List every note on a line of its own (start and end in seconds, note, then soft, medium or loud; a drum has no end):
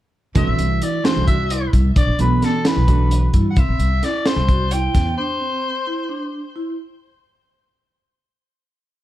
0.35 0.46 C2 medium
0.35 1.00 E3 medium
0.35 1.00 A3 medium
0.35 0.65 C4 medium
0.35 1.00 D4 medium
0.35 1.00 F#4 medium
0.35 0.85 E5 medium
0.35 kick medium
0.35 closed hi-hat medium
0.47 0.57 A1 medium
0.59 0.79 C2 medium
0.59 closed hi-hat medium
0.82 1.11 E4 medium
0.82 1.07 D5 medium
0.82 closed hi-hat medium
1.04 1.36 E3 medium
1.04 1.37 A3 medium
1.04 1.37 D4 medium
1.04 1.37 F#4 medium
1.04 1.27 C5 medium
1.04 snare medium
1.04 closed hi-hat medium
1.16 1.66 C2 medium
1.27 1.42 F#4 medium
1.27 1.70 E5 medium
1.27 kick medium
1.27 closed hi-hat medium
1.50 1.79 E4 medium
1.50 closed hi-hat medium
1.73 1.93 C2 medium
1.73 kick medium
1.73 closed hi-hat medium
1.96 2.06 B1 medium
1.96 2.11 D4 medium
1.96 2.18 D5 loud
1.96 kick medium
1.96 closed hi-hat medium
2.07 2.17 A1 medium
2.19 2.39 B1 medium
2.19 2.84 E3 soft
2.19 2.84 A3 soft
2.19 2.48 B3 medium
2.19 2.84 D4 soft
2.19 2.84 F#4 medium
2.19 2.46 B4 medium
2.19 closed hi-hat medium
2.42 2.66 A4 medium
2.42 snare soft
2.42 closed hi-hat soft
2.65 2.80 E4 medium
2.65 3.31 B4 medium
2.65 snare loud
2.65 closed hi-hat medium
2.76 3.26 B1 medium
2.87 3.52 E3 medium
2.87 3.52 A3 medium
2.87 3.17 D4 medium
2.87 3.53 D4 medium
2.87 3.53 F#4 medium
2.87 kick medium
2.87 closed hi-hat medium
3.11 closed hi-hat medium
3.34 3.54 G2 medium
3.34 3.49 E4 medium
3.34 kick medium
3.34 closed hi-hat medium
3.50 3.61 F#5 medium
3.56 3.67 C2 medium
3.56 3.87 C4 medium
3.56 4.06 E5 medium
3.56 kick medium
3.56 closed hi-hat medium
3.69 3.78 A1 medium
3.79 4.00 C2 medium
3.79 closed hi-hat soft
4.03 4.32 E4 medium
4.03 4.29 D5 medium
4.03 snare soft
4.03 closed hi-hat medium
4.26 4.74 C5 medium
4.26 snare medium
4.26 closed hi-hat medium
4.36 4.86 C2 medium
4.48 4.64 F#4 medium
4.48 kick medium
4.48 closed hi-hat medium
4.71 5.01 E4 medium
4.71 5.17 G5 medium
4.71 closed hi-hat medium
4.95 5.14 E2 medium
4.95 kick medium
4.95 snare soft
4.95 closed hi-hat medium
5.18 5.32 D4 medium
5.18 6.28 C5 medium
5.40 5.69 C4 medium
5.87 6.01 E4 medium
6.09 6.38 D4 medium
6.56 6.70 E4 medium